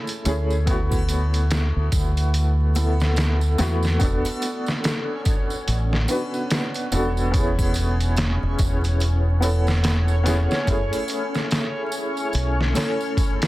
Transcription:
Already playing: A3 C#4 E4 A4
0.07 closed hi-hat, tambourine
0.25 D2 A3 C#4 E4 G#4, closed hi-hat, tambourine
0.50 tambourine
0.65 A3 B3 E4, kick, closed hi-hat, tambourine
0.71 F#4
0.92 kick, tambourine, triangle
1.09 closed hi-hat, tambourine
1.34 closed hi-hat, tambourine
1.51 snare, closed hi-hat, tambourine
1.76 D2
1.92 D2, kick, closed hi-hat, tambourine
2.17 closed hi-hat, tambourine
2.34 closed hi-hat, tambourine
2.75 A3 B3 E4 A4, closed hi-hat, tambourine, triangle
3.00 snare, tambourine
3.16 snare, closed hi-hat, tambourine
3.41 tambourine
3.58 E2 A3 B3 E4 F#4, snare, closed hi-hat, tambourine
3.83 snare, tambourine
3.99 E1 B3 C#4 D4 F#4 C#5, kick, closed hi-hat, tambourine
4.05 A4
4.25 closed hi-hat, tambourine, triangle
4.42 closed hi-hat, tambourine
4.66 snare, tambourine
4.84 snare, closed hi-hat, tambourine
5.25 kick, closed hi-hat, tambourine
5.50 tambourine
5.67 A1, closed hi-hat, tambourine
5.93 snare
6.08 B3 D4 F#4 B4, closed hi-hat, tambourine, triangle
6.34 tambourine
6.50 snare, closed hi-hat, tambourine
6.74 closed hi-hat, tambourine
6.92 E1 B3 D4 F#4 A4, closed hi-hat, tambourine
7.17 tambourine
7.32 B3 C#4 E4, kick, closed hi-hat, tambourine
7.37 G#4
7.59 kick, tambourine, triangle
7.74 closed hi-hat, tambourine
8.01 closed hi-hat, tambourine
8.16 snare, closed hi-hat, tambourine
8.43 E1
8.59 E1, kick, closed hi-hat, tambourine
8.84 closed hi-hat, tambourine
9.00 closed hi-hat, tambourine
9.40 B3 C#4 E4 A4, closed hi-hat, tambourine, triangle
9.67 snare, tambourine
9.84 snare, closed hi-hat, tambourine
10.08 tambourine
10.24 B3 C#4 E4 G#4, snare, closed hi-hat, tambourine
10.51 snare, tambourine
10.65 F#1 A3 C#4 E4, kick, closed hi-hat, tambourine
10.71 G#4
10.93 closed hi-hat, tambourine, triangle
11.08 closed hi-hat, tambourine
11.34 snare, tambourine
11.51 snare, closed hi-hat, tambourine
11.92 tambourine
12.17 tambourine
12.33 B1, closed hi-hat, tambourine
12.61 snare
12.74 A3 C#4 E4 A4, snare, closed hi-hat, tambourine, triangle
13.01 tambourine
13.17 kick, closed hi-hat, tambourine
13.42 snare, closed hi-hat, tambourine

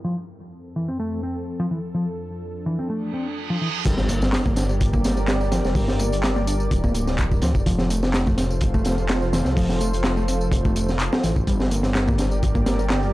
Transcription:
0.04 F2 F3 C4 A4
0.76 E3
0.88 C4
1.00 A3
1.23 C4
1.60 F3
1.71 E3
1.95 F3 D4
2.66 E3
2.79 C4
2.90 A3, reverse cymbal
3.14 C4
3.50 F3
3.61 E3
3.85 G1 G3 G4 A#4 D5, kick, closed hi-hat, crash, tambourine, impact
3.98 snare, tambourine
4.09 A#3, closed hi-hat, tambourine
4.22 snare, tambourine
4.33 snare, clap, closed hi-hat, tambourine
4.46 A#3, kick, tambourine
4.56 D4, snare, closed hi-hat, tambourine
4.69 tambourine
4.81 kick, closed hi-hat, tambourine
4.93 A#3, kick, tambourine
5.04 A#3, snare, closed hi-hat, tambourine
5.17 tambourine
5.28 snare, clap, closed hi-hat, tambourine
5.41 tambourine
5.52 F3, snare, closed hi-hat, tambourine
5.65 F1, snare, tambourine
5.75 G1 G3, kick, open hi-hat, tambourine
5.88 snare, tambourine
5.99 A#3, closed hi-hat, tambourine
6.12 closed hi-hat, tambourine
6.24 snare, clap, closed hi-hat, tambourine
6.36 A#3, tambourine
6.47 D4, closed hi-hat, tambourine
6.60 tambourine
6.71 D1, kick, closed hi-hat, tambourine
6.84 A#3, kick, tambourine
6.94 A#3, closed hi-hat, tambourine
7.07 snare, tambourine
7.18 kick, clap, closed hi-hat, tambourine
7.31 kick, tambourine
7.42 D2 F3, snare, closed hi-hat, tambourine
7.55 F1, kick, tambourine
7.66 F1 F3 F4 A4 C5, kick, closed hi-hat, tambourine
7.79 snare, tambourine
7.90 A3, closed hi-hat, tambourine
8.03 snare, tambourine
8.14 snare, clap, closed hi-hat, tambourine
8.27 A3, kick, tambourine
8.38 C4, snare, closed hi-hat, tambourine
8.50 tambourine
8.61 kick, closed hi-hat, tambourine
8.74 A3, kick, tambourine
8.85 A3, snare, closed hi-hat, tambourine
8.98 tambourine
9.09 snare, clap, closed hi-hat, tambourine
9.22 tambourine
9.33 E3, snare, closed hi-hat, tambourine
9.45 C2, snare, tambourine
9.57 F1 F3, kick, open hi-hat, tambourine
9.69 snare, tambourine
9.81 A3, closed hi-hat, tambourine
9.93 closed hi-hat, tambourine
10.04 snare, clap, closed hi-hat, tambourine
10.17 A3, tambourine
10.28 C4, closed hi-hat, tambourine
10.41 tambourine
10.52 F1, kick, closed hi-hat, tambourine
10.65 A3, kick, tambourine
10.76 A3, closed hi-hat, tambourine
10.89 snare, tambourine
10.99 clap, closed hi-hat, tambourine
11.12 snare, tambourine
11.24 A1 E3, snare, closed hi-hat, tambourine
11.36 kick, tambourine
11.47 G1 G3 G4 A#4 D5, kick, closed hi-hat, tambourine
11.60 snare, tambourine
11.71 A#3, closed hi-hat, tambourine
11.83 snare, tambourine
11.95 snare, clap, closed hi-hat, tambourine
12.07 A#3, kick, tambourine
12.18 D4, snare, closed hi-hat, tambourine
12.31 tambourine
12.43 kick, closed hi-hat, tambourine
12.55 A#3, kick, tambourine
12.66 A#3, snare, closed hi-hat, tambourine
12.79 tambourine
12.90 snare, clap, closed hi-hat, tambourine
13.03 tambourine

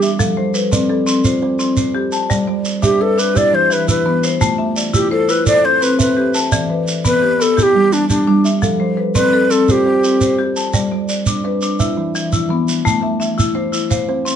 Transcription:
Already playing: G3 D4 G4
0.02 E5, shekere
0.19 F3 A4, shekere
0.37 F3 C5
0.54 B4, shekere
0.72 C4 D5, shekere
0.89 C4 A4
1.06 C4, shekere
1.25 F4 C5, shekere
1.42 C4 C5
1.59 C4, shekere
1.77 C5, shekere
1.94 C4 G4
2.12 A5, shekere
2.30 G3 D5, shekere
2.47 G3 D5
2.65 shekere
2.82 D4 G4 E5, shekere
3.01 D4 A4 B4
3.18 D4 B4, shekere
3.35 E4 G4 D5, shekere
3.53 E3 C5
3.70 E3 B4, shekere
3.87 E4 B4, shekere
4.06 E3 B3
4.23 C5, shekere
4.41 A3 F4, shekere
4.58 A3 E5
4.76 D5, shekere
4.94 E4 F4 G4, shekere
5.11 E4 A4 C5
5.29 E4 B4, shekere
5.46 A4 C5 D5, shekere
5.64 C4 C5
5.81 C4 B4, shekere
5.99 C4 B4 E5, shekere
6.17 C4 G4
6.34 A5, shekere
6.52 E3 D5, shekere
6.69 E3 B4
6.88 shekere
7.05 B3 C4 B4, shekere
7.22 B3 G4
7.40 B3 A4, shekere
7.57 E4 G4 A4, shekere
7.63 G4
7.74 G3 G4
7.92 G3 D4, shekere
8.09 D4 G4, shekere
8.27 G3 D4
8.45 E5, shekere
8.62 F3 A4, shekere
8.80 F3 C5
8.97 B4
9.15 C4 B4 D5, shekere
9.33 C4 A4
9.50 C4 A4, shekere
9.67 F4 A4 C5, shekere
9.71 G4
9.86 C4 C5
10.04 C4, shekere
10.21 C5, shekere
10.39 C4 G4
10.56 A5, shekere
10.74 G3 D5, shekere
10.91 G3 D5
11.09 D5, shekere
11.26 D4, shekere
11.44 D4 B4
11.62 D4, shekere
11.80 E4 E5, shekere
11.97 E3 E4
12.15 E3, shekere
12.32 F3 E4, shekere
12.49 E3 B3
12.68 shekere
12.85 A3 E4, shekere
13.02 A3 E5
13.20 E5, shekere
13.38 E4, shekere
13.55 E4 C5
13.72 E4, shekere
13.90 C5 F5, shekere
14.09 C4 C5
14.25 C4, shekere

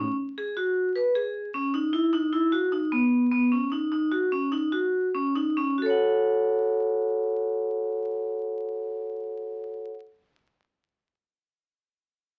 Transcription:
Already playing: C#4
0.38 G#4
0.57 F#4
0.96 B4
1.15 G#4
1.54 C#4
1.74 D#4
1.93 E4
2.13 D#4
2.33 E4
2.52 F#4
2.72 D#4
2.92 B3
3.32 B3
3.52 C#4
3.72 D#4
3.92 D#4
4.12 F#4
4.32 C#4
4.52 D#4
4.72 F#4
5.15 C#4
5.36 D#4
5.57 C#4
5.78 F#4
5.82 A4 C#5
5.90 F#5

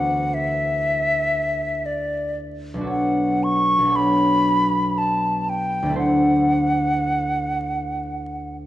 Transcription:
Already playing: D2 D4 E4 F#4 A4 C5 F#5
0.34 E5
1.86 D5
2.74 B1 D4
2.81 F#4 A4
2.87 C#5 F#5
3.44 C#6
3.79 B1 D4
3.85 F#4 A4
3.92 C#5 B5
4.98 A5
5.49 G5
5.83 D2 D4
5.90 E4 A4
5.96 C5 F#5

